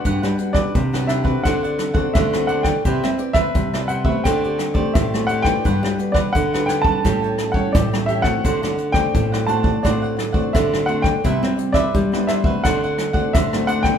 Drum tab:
HH |x-x-xxx-xxx-x-xx|x-xxxxx-xxx-x-xx|x-x-xxx-xxx-x-xx|x-xxxxx-xxx-x-xx|
SD |-r-r-rr-r-r-rr-r|-r-r-r--r-r-rr-r|-r-r-rr-r-r-rr-r|-r-r-r--r-r-rr-r|
BD |o--oo--oo--oo--o|o--oo--oo--oo--o|o--oo--oo--oo--o|o--oo--oo--oo--o|

HH |x-x-xxx-xxx-x-xx|
SD |-r-r-rr-r-r-rr-r|
BD |o--oo--oo--oo--o|